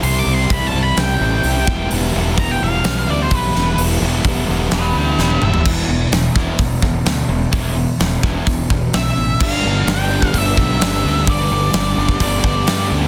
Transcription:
<<
  \new Staff \with { instrumentName = "Lead electric guitar" } { \time 4/4 \key e \minor \tempo 4 = 128 \tuplet 3/2 { c'''8 d'''8 c'''8 b''8 a''8 b''8 } g''2 | r4 bes''16 g''16 f''4 d''16 c''16 b'4 | r2 <b' g''>8 <b' g''>8 <b' g''>8 e''8 | r1 |
r2. e''4 | f''4 g''4 e''2 | d''2 d''4. r8 | }
  \new Staff \with { instrumentName = "Overdriven electric guitar" } { \time 4/4 \key e \minor <c g c' e'>8 <g c' e'>8 <c g c' e'>4. <g c' e'>8 <c g c' e'>8 <e g b e'>8 | <e g b e'>8 <g b e'>8 <e g b e'>4. <g b e'>8 <e g b e'>8 <g b e'>8 | <e g b e'>8 <g b e'>8 <e g b e'>4. <g b e'>8 <e g b e'>8 <g b e'>8 | <e b e'>8 <e b>8 <e b>8 <e b e'>8 <e b>8 <e b>8 <e b>8 <e b>8 |
<e b e'>8 <e b>8 <e b>8 <e b e'>8 <e b>8 <e b>8 <e b>8 <e b>8 | <g, d g b d'>4 <d g b d'>8 <g b d'>8 <d g b d'>4 <g, d g b d'>8 <g b d'>8 | <g, d g b d'>4 <d g b d'>8 <g b d'>8 <d g b d'>4 <g, d g b d'>8 <g b d'>8 | }
  \new Staff \with { instrumentName = "Distorted electric guitar" } { \clef bass \time 4/4 \key e \minor <c g c' e'>8 <g c' e'>8 <c g c' e'>8 <g c' e'>8 <c g c' e'>8 <g c' e'>8 <c g c' e'>8 <e g b e'>8 | <e g b e'>8 <g b e'>8 <e g b e'>8 <g b e'>8 <e g b e'>8 <g b e'>8 <e g b e'>8 <g b e'>8 | <e g b e'>8 <g b e'>8 <e g b e'>8 <g b e'>8 <e g b e'>8 <g b e'>8 <e g b e'>8 <g b e'>8 | <e, b, e>8 <e, b,>8 <e, b,>8 <e, b, e>8 <e, b,>8 <e, b,>8 <e, b,>8 <e, b,>8 |
<e, b, e>8 <e, b,>8 <e, b,>8 <e, b, e>8 <e, b,>8 <e, b,>8 <e, b,>8 <e, b,>8 | <g, d g b d' g'>4 <g, d g b d' g'>4. <g b d' g'>8 <g b d' g'>8 <g b d' g'>8 | <g, d g b d' g'>4 <g, d g b d' g'>4. <g b d' g'>8 <g b d' g'>8 <g b d' g'>8 | }
  \new Staff \with { instrumentName = "Overdriven electric guitar" } { \clef bass \time 4/4 \key e \minor r1 | r1 | r1 | r1 |
r1 | <g, d g>8 <g, d g>8 <g, d g>8 <g, d g>8 <g, d g>8 <g, d g>8 <g, d g>8 <g, d g>8 | <g, d g>8 <g, d g>8 <g, d g>8 <g, d g>8 <g, d g>8 <g, d g>8 <g, d g>8 <g, d g>8 | }
  \new Staff \with { instrumentName = "Fingered electric bass" } { \clef bass \time 4/4 \key e \minor c,8 c,8 c,8 c,8 c,8 a,,8 c,8 e,,8 | e,,8 e,,8 e,,8 e,,8 b,,8 d,8 b,,8 e,,8 | e,,8 e,,8 e,,8 e,,8 e,,8 d,8 e,,8 e,,8 | e,,8 e,,8 e,,8 e,,8 e,,8 e,,8 d,8 e,,8 |
e,,4 e,,8 e,,8 e,,8 e,,8 b,,8 a,,8 | g,,8 g,,8 g,,4 g,,8 b,,8 g,,8 d,8 | g,,8 g,,8 g,,8 g,,8 g,,8 g,,8 g,8 d,8 | }
  \new DrumStaff \with { instrumentName = "Drums" } \drummode { \time 4/4 hho4 <hho bd>4 <hho sn>4 hho8 bd8 | hho4 <hho bd>4 <hho sn>4 <hho bd>8 sn8 | hho4 <hho bd>4 <hho sn>4 sn16 tommh16 toml16 tomfh16 | <cymc bd>4 <hho sn>8 bd8 <hho bd>8 bd8 <hho sn>4 |
<hho bd>4 <hho sn>8 bd8 <hho bd>8 bd8 <hho sn>4 | <cymc bd>4 <hho sn>8. bd16 <hho bd>8 bd8 <hho sn>4 | <hho bd>4 <hho sn>8. bd16 <hho bd>8 bd8 <hho sn>4 | }
>>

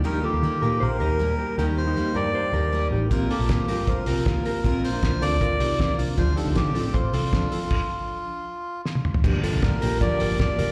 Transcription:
<<
  \new Staff \with { instrumentName = "Melodica" } { \time 4/4 \key g \minor \tempo 4 = 157 bes'8 g'4. bes'2 | bes'8 c''4 d''2 r8 | bes'8 g'4. bes'2 | bes'8 c''4 d''2 r8 |
c''8 a'8 g'4 f'2~ | f'2. r4 | r4 bes'4 d''4 d''4 | }
  \new Staff \with { instrumentName = "Clean electric guitar" } { \time 4/4 \key g \minor <ees' g'>8 <f' a'>4 <g' bes'>8 <g' c''>8 <g' bes'>4 <g' bes'>8 | <ees' g'>8. <ees' g'>8. <g' bes'>8 <g' c''>8 <g' bes'>4 <ees' g'>8 | <c' g'>8 <f' a'>4 <g' bes'>8 <f' c''>8 <g' bes'>4 <g' bes'>8 | <c' f'>8. <d' f'>8. <f' a'>8 <f' bes'>8 <ees' g'>4 <d' f'>8 |
<d' f'>8 <ees' g'>4 <f' a'>8 <a' c''>8 <f' a'>4 <f' a'>8 | r1 | <d' g'>8 <f' a'>4 <g' bes'>8 <bes' d''>8 <g' bes'>4 <g' bes'>8 | }
  \new Staff \with { instrumentName = "Steel-string acoustic guitar" } { \time 4/4 \key g \minor <ees g bes ees' g'>4 <g bes ees' g'>8 <bes ees' g'>4 <bes ees' g'>8 <g bes ees' g'>4 | <ees g bes ees' g'>4 <g bes ees' g'>8 <bes ees' g'>4 <bes ees' g'>8 <g bes ees' g'>4 | <bes c' f' bes'>4 <bes c' f' bes'>8 <c' f' bes'>4 <c' f' bes'>8 <bes c' f' bes'>4 | <bes c' f' bes'>4 <bes c' f' bes'>8 <c' f' bes'>4 <c' f' bes'>8 <bes c' f' bes'>4 |
<d f c' d' a'>4 <f c' d' a'>8 <c' d' a'>4 <c' d' a'>8 <f c' d' a'>4 | r1 | <g, d f bes d' g'>4 <f bes d' g'>8 <f bes d' g'>8 <g, d f bes d' g'>4 <f bes d' g'>4 | }
  \new Staff \with { instrumentName = "Picked electric bass" } { \clef bass \time 4/4 \key g \minor ees,8 r16 ees,16 ees8 bes,8 bes,,8 ees,4 r8 | ees,4 f,8 g,4 ees,4 a,,8 | bes,,8 r16 bes,,16 bes,8 g,8 f,8 c,4 r8 | bes,,4 c,8 d,4 c,4 c,8 |
d,8 r16 d,16 d8 a,8 a,,8 c,4 r8 | r1 | g,,8. c,8. bes,,4 g,,4 f,,8 | }
  \new DrumStaff \with { instrumentName = "Drums" } \drummode { \time 4/4 r4 r4 r4 r4 | r4 r4 r4 r4 | <hh bd>8 hho8 <hh bd sn>8 hho8 <hh bd>8 hho8 <hh bd sn>8 hho8 | <hh bd>8 hho8 <hh bd sn>8 hho8 <hh bd>8 hho8 <hh bd sn>8 hho8 |
<hh bd>8 hho8 <hh bd sn>8 hho8 <hh bd>8 hho8 <hh bd sn>8 hho8 | <cymc bd>4 r4 r4 sn16 tommh16 toml16 tomfh16 | <cymc bd>8 hho8 <hh bd sn>8 hho8 <hh bd>8 hho8 <hh bd sn>8 hho8 | }
>>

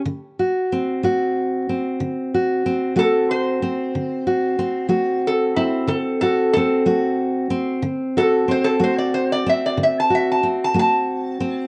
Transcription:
<<
  \new Staff \with { instrumentName = "Resonator guitar played with a steel bar" } { \time 12/8 \key d \major \tempo 4. = 62 r1 r8 a'8 c''4~ | c''2 a'8 e'8 a'8 a'8 a'8 r4. | r8 a'8 c''16 a'16 c''16 d''16 c''16 d''16 e''16 d''16 e''16 a''16 e''16 a''16 r16 a''16 a''4. | }
  \new Staff \with { instrumentName = "Steel-string acoustic guitar" } { \time 12/8 \key d \major << { r8 fis'8 c'8 fis'4 c'4 fis'8 c'8 fis'4 c'8~ | c'8 fis'8 c'8 fis'4 c'4 fis'8 c'8 fis'4 c'8~ | c'8 fis'8 c'8 fis'4 c'4 fis'8 c'8 fis'4 c'8 | } \\ { d4 r8 a4 r8 d4 r8 a4 r8 | d4 r8 a4 r8 d4 r8 a4 r8 | d4 r8 a4 r8 d4 r8 a4 r8 | } >> }
>>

